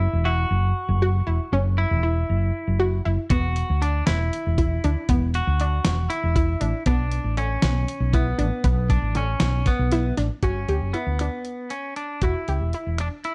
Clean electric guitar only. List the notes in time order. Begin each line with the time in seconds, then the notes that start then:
Already playing: E4
0.25 F#4
1.78 E4
3.31 F#4
3.82 D4
4.07 E4
5.35 F#4
6.10 E4
6.87 D4
7.38 C#4
8.14 B3
8.90 D4
9.17 C#4
9.67 B3
10.44 C#4
10.93 B3
11.71 C#4
11.96 D4
12.24 E4
13.01 D4
13.25 E4